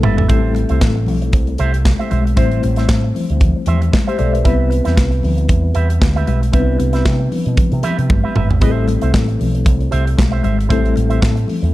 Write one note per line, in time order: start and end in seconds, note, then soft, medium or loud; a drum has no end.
0.00 0.16 G1 medium
0.00 0.26 G3 medium
0.00 0.30 B3 medium
0.00 0.27 D4 medium
0.00 0.28 E4 medium
0.00 0.28 A4 loud
0.00 0.17 A4 medium
0.00 0.16 B4 medium
0.00 0.16 E5 medium
0.00 mid tom loud
0.00 high conga medium
0.17 0.28 G#1 medium
0.17 0.28 A4 medium
0.17 0.28 B4 medium
0.17 0.28 E5 medium
0.17 floor tom loud
0.28 0.63 A1 loud
0.28 2.33 G3 medium
0.28 2.33 A3 medium
0.28 2.33 C4 medium
0.28 2.34 E4 medium
0.28 0.53 G4 medium
0.28 2.34 A4 medium
0.28 0.53 C5 medium
0.28 0.53 E5 medium
0.28 kick loud
0.28 closed hi-hat medium
0.28 muted conga medium
0.55 muted clean electric guitar stroke soft
0.55 closed hi-hat medium
0.55 muted conga medium
0.69 0.80 C2 medium
0.69 0.80 G4 medium
0.69 0.81 C5 medium
0.69 0.81 E5 medium
0.69 closed hi-hat medium
0.81 1.08 A1 loud
0.81 muted clean electric guitar stroke soft
0.81 kick loud
0.81 snare loud
0.81 clap medium
0.81 high conga medium
0.96 muted clean electric guitar stroke soft
1.06 1.33 B1 medium
1.06 open hi-hat medium
1.06 low conga medium
1.21 muted clean electric guitar stroke medium
1.21 closed hi-hat soft
1.32 1.55 C2 medium
1.32 kick loud
1.32 closed hi-hat medium
1.32 muted conga medium
1.47 muted clean electric guitar stroke soft
1.47 closed hi-hat soft
1.58 1.94 C2 medium
1.58 1.76 G4 medium
1.58 1.72 C5 medium
1.58 1.71 E5 medium
1.58 closed hi-hat medium
1.58 muted conga soft
1.73 muted clean electric guitar stroke medium
1.73 closed hi-hat medium
1.85 muted clean electric guitar stroke soft
1.85 kick loud
1.85 snare loud
1.85 clap medium
1.85 high conga medium
1.99 2.09 G4 medium
1.99 2.10 C5 medium
1.99 2.10 E5 medium
1.99 closed hi-hat soft
2.10 2.33 B1 medium
2.10 2.25 G4 medium
2.10 2.24 C5 medium
2.10 2.24 E5 medium
2.10 closed hi-hat medium
2.10 high conga medium
2.25 muted clean electric guitar stroke soft
2.25 closed hi-hat medium
2.35 2.59 A1 loud
2.35 4.40 G3 medium
2.35 4.41 A3 medium
2.35 4.41 C4 medium
2.35 4.41 E4 medium
2.35 2.61 G4 medium
2.35 2.61 C5 medium
2.35 3.65 C5 medium
2.35 2.61 E5 loud
2.35 kick loud
2.35 closed hi-hat medium
2.35 muted conga medium
2.51 closed hi-hat soft
2.63 2.85 A1 loud
2.63 muted clean electric guitar stroke soft
2.63 closed hi-hat medium
2.63 muted conga medium
2.76 2.87 G4 medium
2.76 2.88 C5 medium
2.76 2.88 E5 medium
2.76 snare soft
2.76 closed hi-hat medium
2.89 3.11 A2 medium
2.89 muted clean electric guitar stroke soft
2.89 kick loud
2.89 snare loud
2.89 clap medium
2.89 high conga medium
3.04 muted clean electric guitar stroke soft
3.15 open hi-hat medium
3.15 low conga medium
3.30 3.52 D2 medium
3.30 muted clean electric guitar stroke soft
3.30 closed hi-hat soft
3.40 kick loud
3.40 closed hi-hat medium
3.40 muted conga medium
3.40 low conga medium
3.56 muted clean electric guitar stroke soft
3.66 3.89 E2 medium
3.66 3.84 G4 medium
3.66 3.81 C5 medium
3.66 3.80 E5 loud
3.66 closed hi-hat medium
3.66 muted conga soft
3.66 low conga medium
3.81 muted clean electric guitar stroke medium
3.81 closed hi-hat soft
3.92 muted clean electric guitar stroke soft
3.92 kick loud
3.92 snare loud
3.92 clap medium
3.92 high conga medium
4.07 4.17 G4 medium
4.07 4.19 G4 medium
4.07 4.19 C5 medium
4.07 4.17 C5 medium
4.07 4.17 E5 medium
4.07 closed hi-hat soft
4.18 4.41 B1 medium
4.18 4.33 G4 medium
4.18 4.33 A4 medium
4.18 4.33 C5 medium
4.18 4.33 D5 medium
4.18 4.32 E5 medium
4.18 closed hi-hat medium
4.18 high conga medium
4.33 4.45 B4 soft
4.33 4.58 E5 medium
4.33 muted clean electric guitar stroke soft
4.33 closed hi-hat medium
4.43 4.79 C2 loud
4.43 6.48 G3 medium
4.43 6.49 B3 medium
4.43 6.49 C4 medium
4.43 6.49 E4 medium
4.43 4.69 G4 medium
4.43 4.69 B4 medium
4.43 6.50 B4 medium
4.43 4.69 E5 medium
4.43 kick loud
4.43 closed hi-hat medium
4.43 muted conga medium
4.70 muted clean electric guitar stroke soft
4.70 closed hi-hat medium
4.70 muted conga medium
4.85 4.96 E2 medium
4.85 4.95 G4 medium
4.85 4.95 B4 medium
4.85 4.96 E5 medium
4.85 snare soft
4.85 closed hi-hat medium
4.96 5.19 C2 medium
4.96 muted clean electric guitar stroke soft
4.96 kick loud
4.96 snare loud
4.96 clap medium
4.96 high conga medium
5.11 muted clean electric guitar stroke soft
5.11 closed hi-hat soft
5.23 5.45 D2 loud
5.23 open hi-hat medium
5.23 low conga medium
5.37 muted clean electric guitar stroke medium
5.37 closed hi-hat soft
5.49 5.71 E2 medium
5.49 kick loud
5.49 closed hi-hat medium
5.49 muted conga medium
5.63 muted clean electric guitar stroke soft
5.74 5.97 E2 medium
5.74 5.92 G4 medium
5.74 5.89 B4 medium
5.74 5.88 E5 medium
5.74 closed hi-hat medium
5.89 muted clean electric guitar stroke soft
5.89 closed hi-hat medium
6.01 6.23 D2 loud
6.01 muted clean electric guitar stroke soft
6.01 kick loud
6.01 snare loud
6.01 clap medium
6.01 high conga medium
6.16 6.26 G4 medium
6.16 6.27 B4 medium
6.16 6.27 E5 medium
6.16 closed hi-hat soft
6.27 6.49 B1 medium
6.27 6.41 G4 medium
6.27 6.41 B4 medium
6.27 6.40 E5 medium
6.27 closed hi-hat medium
6.27 high conga medium
6.41 muted clean electric guitar stroke soft
6.41 closed hi-hat medium
6.52 6.75 C2 loud
6.52 8.57 G3 medium
6.52 8.57 B3 medium
6.52 8.57 C4 medium
6.52 6.61 D4 medium
6.52 6.77 G4 medium
6.52 6.77 B4 medium
6.52 8.58 B4 medium
6.52 6.78 E5 medium
6.52 kick loud
6.52 closed hi-hat medium
6.52 muted conga medium
6.60 8.61 E4 medium
6.79 7.02 C2 medium
6.79 muted clean electric guitar stroke medium
6.79 closed hi-hat medium
6.79 muted conga medium
6.93 7.04 G4 medium
6.93 7.04 B4 medium
6.93 7.04 E5 medium
6.93 snare soft
6.93 closed hi-hat medium
7.05 7.27 C3 loud
7.05 muted clean electric guitar stroke soft
7.05 kick loud
7.05 snare loud
7.05 clap medium
7.05 high conga medium
7.19 muted clean electric guitar stroke soft
7.32 open hi-hat medium
7.32 low conga medium
7.45 7.56 B2 medium
7.45 muted clean electric guitar stroke medium
7.45 closed hi-hat soft
7.57 kick loud
7.57 closed hi-hat medium
7.57 muted conga soft
7.57 low conga medium
7.71 7.82 C3 loud
7.71 muted clean electric guitar stroke medium
7.71 closed hi-hat soft
7.83 8.00 G4 medium
7.83 7.98 B4 loud
7.83 7.97 E5 loud
7.83 closed hi-hat medium
7.83 muted conga soft
7.83 low conga medium
7.98 8.08 C3 medium
7.98 muted clean electric guitar stroke soft
7.98 closed hi-hat medium
8.10 8.22 G1 medium
8.10 muted clean electric guitar stroke soft
8.10 kick loud
8.10 high tom medium
8.10 high conga medium
8.24 8.34 G4 medium
8.24 8.35 B4 medium
8.24 8.35 E5 medium
8.36 8.50 G1 medium
8.36 8.49 G4 medium
8.36 8.49 B4 medium
8.36 8.49 E5 medium
8.36 mid tom loud
8.36 high conga medium
8.50 8.60 G#1 medium
8.50 muted clean electric guitar stroke soft
8.50 floor tom loud
8.61 8.96 A1 loud
8.61 10.65 G3 medium
8.61 10.66 A3 medium
8.61 10.66 C4 medium
8.61 10.66 E4 medium
8.61 8.86 G4 medium
8.61 8.69 G#4 medium
8.61 8.86 C5 medium
8.61 8.86 E5 medium
8.61 kick loud
8.61 closed hi-hat medium
8.61 muted conga medium
8.70 10.70 A4 medium
8.87 muted clean electric guitar stroke medium
8.87 closed hi-hat medium
8.87 muted conga medium
9.01 9.12 C2 medium
9.01 9.12 G4 medium
9.01 9.12 C5 medium
9.01 9.12 E5 medium
9.01 closed hi-hat soft
9.13 9.36 A1 medium
9.13 muted clean electric guitar stroke soft
9.13 kick loud
9.13 snare loud
9.13 clap loud
9.13 high conga medium
9.28 muted clean electric guitar stroke soft
9.28 closed hi-hat soft
9.40 9.66 B1 medium
9.40 open hi-hat medium
9.40 low conga medium
9.54 muted clean electric guitar stroke soft
9.54 closed hi-hat soft
9.65 9.88 C2 medium
9.65 kick loud
9.65 closed hi-hat medium
9.65 muted conga medium
9.80 muted clean electric guitar stroke soft
9.80 closed hi-hat soft
9.91 10.14 C2 loud
9.91 10.08 G4 medium
9.91 10.05 C5 loud
9.91 10.05 E5 medium
9.91 closed hi-hat medium
10.06 muted clean electric guitar stroke soft
10.06 closed hi-hat medium
10.17 10.40 B1 medium
10.17 muted clean electric guitar stroke soft
10.17 kick loud
10.17 snare loud
10.17 clap loud
10.17 high conga medium
10.31 10.42 G4 medium
10.31 10.43 C5 medium
10.31 10.43 E5 medium
10.43 10.71 G#1 loud
10.43 10.57 G4 medium
10.43 10.58 C5 medium
10.43 10.57 E5 medium
10.43 closed hi-hat medium
10.43 high conga medium
10.59 muted clean electric guitar stroke soft
10.59 closed hi-hat medium
10.69 10.92 A1 loud
10.69 11.74 G3 medium
10.69 11.74 A3 medium
10.69 11.74 C4 medium
10.69 11.74 E4 medium
10.69 10.93 G4 medium
10.69 11.74 A4 medium
10.69 10.94 C5 medium
10.69 10.94 E5 medium
10.69 kick loud
10.69 closed hi-hat medium
10.69 muted conga medium
10.85 closed hi-hat soft
10.96 11.18 A1 medium
10.96 muted clean electric guitar stroke soft
10.96 closed hi-hat medium
10.96 muted conga medium
11.10 11.20 G4 medium
11.10 11.20 C5 medium
11.10 11.21 E5 medium
11.10 closed hi-hat soft
11.21 11.44 A2 loud
11.21 muted clean electric guitar stroke soft
11.21 kick loud
11.21 snare loud
11.21 clap medium
11.21 high conga medium
11.35 muted clean electric guitar stroke soft
11.35 closed hi-hat soft
11.48 open hi-hat medium
11.48 low conga medium
11.62 11.74 E2 medium
11.62 muted clean electric guitar stroke medium
11.62 closed hi-hat soft